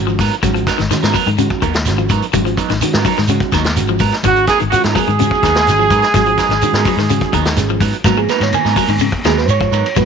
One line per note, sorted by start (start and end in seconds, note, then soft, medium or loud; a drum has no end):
0.00 0.16 G#1 medium
0.00 0.19 D#3 medium
0.00 0.19 G#3 medium
0.00 0.19 C#4 medium
0.00 0.19 F#4 loud
0.07 0.21 F3 medium
0.07 shekere soft
0.19 0.30 G#2 medium
0.19 0.34 F#3 medium
0.19 0.34 B3 medium
0.19 0.34 D#4 medium
0.19 0.34 A#4 medium
0.19 kick medium
0.19 open hi-hat medium
0.19 shekere medium
0.31 closed hi-hat soft
0.31 shekere soft
0.43 0.64 G#1 medium
0.43 0.68 D#3 medium
0.43 0.50 F#3 medium
0.43 0.68 G#3 medium
0.43 0.68 C#4 medium
0.43 0.68 F#4 loud
0.43 kick loud
0.43 closed hi-hat medium
0.43 shekere medium
0.54 0.68 F3 medium
0.54 closed hi-hat soft
0.54 shekere soft
0.67 0.81 F#3 medium
0.67 0.82 B3 medium
0.67 0.82 D#4 medium
0.67 0.82 A#4 medium
0.67 kick medium
0.67 snare soft
0.67 closed hi-hat medium
0.67 shekere medium
0.78 0.90 G#1 medium
0.78 0.85 D#3 medium
0.78 snare soft
0.78 closed hi-hat soft
0.78 shekere soft
0.91 1.04 D#3 medium
0.91 1.15 D#3 medium
0.91 1.16 G#3 medium
0.91 1.15 C#4 medium
0.91 1.16 F#4 medium
0.91 snare soft
0.91 closed hi-hat medium
0.91 shekere medium
1.03 1.13 G#2 medium
1.03 1.14 B3 soft
1.03 1.14 D#4 medium
1.03 1.14 A#4 medium
1.03 snare medium
1.03 closed hi-hat soft
1.03 shekere soft
1.14 1.21 F#3 medium
1.14 1.29 F#3 medium
1.14 1.29 B3 medium
1.14 1.29 D#4 medium
1.14 1.29 A#4 medium
1.14 kick medium
1.14 open hi-hat medium
1.14 shekere medium
1.26 1.47 G#2 loud
1.26 1.34 D#3 medium
1.26 closed hi-hat soft
1.26 shekere soft
1.38 1.52 C#3 medium
1.38 1.63 D#3 loud
1.38 1.63 G#3 medium
1.38 1.63 C#4 medium
1.38 1.63 F#4 loud
1.38 closed hi-hat medium
1.38 shekere medium
1.50 kick medium
1.50 shekere soft
1.62 1.89 D#2 medium
1.62 1.76 D#3 medium
1.62 1.76 F#3 medium
1.62 1.77 B3 medium
1.62 1.76 D#4 medium
1.62 1.77 A#4 medium
1.62 kick medium
1.62 closed hi-hat medium
1.62 shekere medium
1.74 snare medium
1.74 closed hi-hat soft
1.74 shekere soft
1.86 2.07 G#1 medium
1.86 2.11 D#3 medium
1.86 2.11 G#3 medium
1.86 2.11 C#4 medium
1.86 2.11 F#4 medium
1.86 snare soft
1.86 closed hi-hat medium
1.86 shekere medium
1.98 2.12 F3 medium
1.98 shekere soft
2.09 2.20 G#2 medium
2.09 2.25 F#3 medium
2.09 2.25 B3 medium
2.09 2.25 D#4 medium
2.09 2.25 A#4 medium
2.09 kick medium
2.09 closed hi-hat medium
2.09 shekere medium
2.22 closed hi-hat soft
2.22 shekere soft
2.33 2.55 G#1 medium
2.33 2.59 D#3 medium
2.33 2.40 F#3 medium
2.33 2.59 G#3 medium
2.33 2.58 C#4 medium
2.33 2.58 F#4 loud
2.33 kick loud
2.33 closed hi-hat medium
2.33 shekere medium
2.45 2.59 F3 medium
2.45 closed hi-hat soft
2.45 shekere soft
2.57 2.72 F#3 medium
2.57 2.72 B3 medium
2.57 2.72 D#4 medium
2.57 2.72 A#4 medium
2.57 kick medium
2.57 closed hi-hat medium
2.57 shekere medium
2.69 2.80 G#1 medium
2.69 2.77 D#3 medium
2.69 snare soft
2.69 closed hi-hat soft
2.69 shekere soft
2.81 2.96 D#3 medium
2.81 3.07 D#3 medium
2.81 3.06 G#3 medium
2.81 3.07 C#4 medium
2.81 3.07 F#4 loud
2.81 closed hi-hat medium
2.81 shekere medium
2.93 3.04 G#2 medium
2.93 3.05 B3 medium
2.93 3.06 A#4 medium
2.93 snare medium
2.93 closed hi-hat soft
2.93 shekere soft
3.05 3.12 F#3 medium
3.05 3.20 F#3 medium
3.05 3.20 B3 medium
3.05 3.20 D#4 medium
3.05 3.21 A#4 medium
3.05 kick medium
3.05 open hi-hat medium
3.05 shekere medium
3.17 3.38 G#2 medium
3.17 3.24 D#3 medium
3.17 snare soft
3.17 shekere soft
3.28 3.43 C#3 medium
3.28 3.54 D#3 medium
3.28 3.53 G#3 medium
3.28 3.54 C#4 medium
3.28 3.53 F#4 loud
3.28 closed hi-hat medium
3.28 shekere medium
3.40 kick medium
3.40 closed hi-hat soft
3.40 shekere soft
3.52 3.79 D#2 medium
3.52 3.67 D#3 medium
3.52 3.65 F#3 medium
3.52 3.65 B3 medium
3.52 3.64 D#4 medium
3.52 3.63 A#4 medium
3.52 kick medium
3.52 snare soft
3.52 closed hi-hat medium
3.52 shekere medium
3.64 3.80 B3 soft
3.64 3.79 A#4 medium
3.64 muted clean electric guitar stroke soft
3.64 snare medium
3.64 closed hi-hat soft
3.64 shekere soft
3.76 3.98 G#1 medium
3.76 4.01 D#3 medium
3.76 4.01 G#3 medium
3.76 4.01 C#4 medium
3.76 4.01 F#4 loud
3.76 closed hi-hat medium
3.76 shekere medium
3.88 4.02 F3 medium
3.88 shekere soft
3.99 4.11 G#2 medium
3.99 4.14 F#3 medium
3.99 4.15 B3 medium
3.99 4.15 D#4 medium
3.99 4.15 A#4 medium
3.99 kick medium
3.99 open hi-hat medium
3.99 shekere medium
4.12 snare soft
4.12 closed hi-hat soft
4.12 shekere soft
4.23 4.45 G#1 loud
4.23 4.49 D#3 medium
4.23 4.32 D#3 medium
4.23 4.49 G#3 medium
4.23 4.49 C#4 medium
4.23 4.47 F#4 medium
4.23 4.49 F#4 medium
4.23 4.47 F#4 medium
4.23 kick loud
4.23 closed hi-hat medium
4.23 shekere medium
4.36 closed hi-hat soft
4.36 shekere soft
4.47 4.62 F#3 medium
4.47 4.63 B3 medium
4.47 4.62 D#4 medium
4.47 4.58 G#4 loud
4.47 4.60 G#4 medium
4.47 4.63 A#4 medium
4.47 kick medium
4.47 snare soft
4.47 closed hi-hat medium
4.47 shekere medium
4.60 4.71 G#1 medium
4.60 4.67 D#3 medium
4.60 closed hi-hat soft
4.60 shekere soft
4.70 4.86 D#3 medium
4.70 4.97 D#3 medium
4.70 4.97 G#3 medium
4.70 4.97 C#4 medium
4.70 4.97 F4 medium
4.70 4.81 F#4 medium
4.70 4.83 F#4 medium
4.70 closed hi-hat medium
4.70 shekere medium
4.84 4.95 G#2 medium
4.84 4.94 B3 soft
4.84 4.95 D#4 medium
4.84 4.95 A#4 medium
4.84 snare medium
4.84 closed hi-hat soft
4.84 shekere soft
4.93 5.09 F#3 medium
4.93 5.03 F#3 medium
4.93 5.10 B3 medium
4.93 5.10 D#4 medium
4.93 7.53 G#4 medium
4.93 7.53 G#4 loud
4.93 5.10 A#4 medium
4.93 kick medium
4.93 open hi-hat medium
4.93 shekere medium
5.07 5.29 G#2 medium
5.07 5.15 D#3 medium
5.07 closed hi-hat soft
5.07 shekere soft
5.19 5.33 C#3 medium
5.19 5.44 D#3 medium
5.19 5.44 G#3 medium
5.19 5.44 C#4 medium
5.19 5.44 F#4 loud
5.19 closed hi-hat medium
5.19 shekere medium
5.31 kick medium
5.31 shekere soft
5.43 5.69 D#2 medium
5.43 5.57 D#3 medium
5.43 5.55 F#3 medium
5.43 5.55 B3 medium
5.43 5.55 D#4 medium
5.43 5.54 A#4 medium
5.43 kick medium
5.43 snare soft
5.43 closed hi-hat medium
5.43 shekere medium
5.55 5.70 B3 soft
5.55 5.70 D#4 medium
5.55 5.69 A#4 medium
5.55 snare medium
5.55 closed hi-hat soft
5.55 shekere soft
5.67 5.88 G#1 medium
5.67 5.92 D#3 medium
5.67 5.92 G#3 medium
5.67 5.92 C#4 medium
5.67 5.92 F#4 medium
5.67 snare soft
5.67 closed hi-hat medium
5.67 shekere medium
5.79 5.93 F3 medium
5.79 shekere soft
5.90 6.01 G#2 medium
5.90 6.05 F#3 medium
5.90 6.05 B3 medium
5.90 6.06 D#4 medium
5.90 6.06 A#4 medium
5.90 kick medium
5.90 closed hi-hat medium
5.90 shekere medium
6.02 snare soft
6.02 closed hi-hat soft
6.02 shekere soft
6.14 6.35 G#1 medium
6.14 6.39 D#3 loud
6.14 6.22 F#3 medium
6.14 6.39 G#3 medium
6.14 6.39 C#4 medium
6.14 6.39 F#4 loud
6.14 kick medium
6.14 snare soft
6.14 closed hi-hat medium
6.14 shekere medium
6.26 6.41 F3 medium
6.26 closed hi-hat soft
6.26 shekere soft
6.38 6.53 F#3 medium
6.38 6.53 B3 medium
6.38 6.53 D#4 medium
6.38 6.53 A#4 medium
6.38 kick medium
6.38 snare soft
6.38 closed hi-hat medium
6.38 shekere medium
6.49 6.60 G#1 medium
6.49 6.58 D#3 medium
6.49 snare soft
6.49 closed hi-hat soft
6.49 shekere soft
6.61 6.87 D#3 medium
6.61 6.77 D#3 medium
6.61 6.87 G#3 medium
6.61 6.87 C#4 medium
6.61 6.87 F#4 medium
6.61 closed hi-hat medium
6.61 shekere medium
6.73 6.84 G#2 medium
6.73 6.84 B3 soft
6.73 6.84 D#4 medium
6.73 6.85 A#4 medium
6.73 snare medium
6.73 closed hi-hat soft
6.73 shekere soft
6.85 7.00 F#3 medium
6.85 6.94 F#3 medium
6.85 7.00 B3 medium
6.85 7.00 D#4 medium
6.85 muted clean electric guitar stroke medium
6.85 kick medium
6.85 open hi-hat medium
6.85 shekere medium
6.97 7.18 G#2 medium
6.97 7.05 D#3 medium
6.97 snare soft
6.97 shekere soft
7.09 7.24 C#3 medium
7.09 7.34 D#3 medium
7.09 7.34 G#3 medium
7.09 7.34 C#4 medium
7.09 7.34 F#4 loud
7.09 closed hi-hat medium
7.09 shekere medium
7.21 kick medium
7.21 closed hi-hat soft
7.21 shekere soft
7.33 7.58 D#2 medium
7.33 7.48 D#3 medium
7.33 7.45 F#3 medium
7.33 7.45 B3 medium
7.33 7.44 D#4 medium
7.33 7.44 A#4 medium
7.33 kick medium
7.33 closed hi-hat medium
7.33 shekere medium
7.45 7.60 B3 soft
7.45 7.60 D#4 soft
7.45 7.60 A#4 medium
7.45 snare medium
7.45 closed hi-hat soft
7.45 shekere soft
7.56 7.78 G#1 medium
7.56 7.82 D#3 medium
7.56 7.81 G#3 medium
7.56 7.82 C#4 medium
7.56 7.82 G#4 medium
7.56 snare soft
7.56 closed hi-hat medium
7.56 shekere medium
7.69 7.84 F3 medium
7.69 shekere soft
7.80 7.91 G#2 medium
7.80 7.95 F#3 medium
7.80 7.96 B3 medium
7.80 7.96 D#4 medium
7.80 muted clean electric guitar stroke medium
7.80 kick medium
7.80 open hi-hat medium
7.80 shekere medium
7.92 closed hi-hat soft
7.92 shekere soft
8.04 8.26 G#2 medium
8.04 8.19 F#3 medium
8.04 8.13 F#3 medium
8.04 9.25 A#3 medium
8.04 8.19 B3 medium
8.04 9.25 B3 medium
8.04 8.20 D#4 medium
8.04 8.17 F#4 medium
8.04 8.20 A#4 medium
8.04 kick loud
8.04 snare soft
8.04 ride bell medium
8.04 shekere medium
8.17 8.31 F3 medium
8.17 8.29 G#4 medium
8.17 shekere soft
8.29 8.44 F#3 medium
8.29 8.44 B3 medium
8.29 8.44 D#4 medium
8.29 8.44 A#4 medium
8.29 8.41 B4 medium
8.29 snare soft
8.29 ride bell medium
8.29 shekere medium
8.40 8.51 G#2 medium
8.40 8.49 D#3 medium
8.40 8.53 C#5 medium
8.40 snare soft
8.40 ride bell medium
8.40 shekere soft
8.53 8.68 D#3 medium
8.53 9.00 G#5 medium
8.53 ride bell medium
8.53 shekere medium
8.65 8.75 G#2 medium
8.65 8.75 B3 soft
8.65 8.76 D#4 soft
8.65 8.76 A#4 medium
8.65 snare soft
8.65 shekere soft
8.76 8.91 F#3 medium
8.76 8.84 F#3 medium
8.76 8.91 D#4 medium
8.76 8.91 A#4 medium
8.76 muted clean electric guitar stroke medium
8.76 kick medium
8.76 open hi-hat medium
8.76 shekere medium
8.88 9.09 G#2 medium
8.88 8.96 D#3 medium
8.88 ride bell medium
8.88 shekere soft
8.99 9.15 C#3 medium
8.99 ride bell medium
8.99 shekere medium
9.12 kick medium
9.12 shekere soft
9.24 9.48 D#2 medium
9.24 9.39 D#3 medium
9.24 9.39 F#3 medium
9.24 9.47 A#3 medium
9.24 9.39 B3 medium
9.24 9.47 B3 soft
9.24 9.39 D#4 medium
9.24 9.47 F#4 medium
9.24 9.37 G#4 loud
9.24 9.39 A#4 medium
9.24 snare medium
9.24 ride bell medium
9.24 shekere medium
9.37 9.48 B4 medium
9.37 snare soft
9.37 shekere soft
9.46 9.69 G#2 loud
9.46 9.48 C5 medium
9.46 ride bell soft
9.46 shekere loud
9.50 9.95 C#5 loud
9.61 9.74 F3 medium
9.61 kick medium
9.61 shekere soft
9.71 9.82 G#2 loud
9.71 9.86 F#3 medium
9.71 9.86 B3 medium
9.71 9.86 D#4 medium
9.71 9.87 A#4 medium
9.71 ride bell medium
9.71 shekere medium
9.86 ride bell medium
9.86 shekere soft
9.96 10.05 G#2 medium
9.96 10.03 F#3 medium
9.96 10.05 A#3 medium
9.96 10.05 B3 soft
9.96 10.05 F#4 medium
9.96 10.05 B4 medium
9.96 kick loud
9.96 ride bell medium
9.96 shekere loud